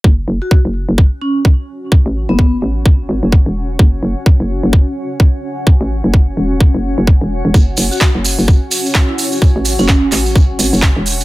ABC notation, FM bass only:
X:1
M:4/4
L:1/16
Q:"Swing 16ths" 1/4=128
K:F#m
V:1 name="FM bass" clef=bass
F,,,2 F,,, z2 F,,,2 F,,,2 z6 z | z A,,,2 F,,,3 A,,,4 G,,, F,,,2 E,,,3 | F,,,2 F,,, z2 F,,,2 F,,,2 z6 z | z A,,,2 F,,,3 E,,,3 F,,,2 F,,,2 E,,,2 E,,, |
F,,,2 F,,, z2 F,,,2 F,,,2 z6 z | z A,,,2 F,,,3 A,,,4 G,,, F,,,2 E,,,3 |]